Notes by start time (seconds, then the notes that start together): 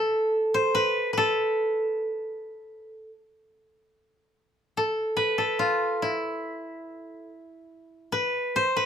Already playing: A4 B4
0.54 C5
0.75 B4
1.13 B4
1.18 A4
4.77 A4
5.17 B4
5.38 A4
5.59 F4
6.02 E4
8.12 B4
8.56 C5
8.77 B4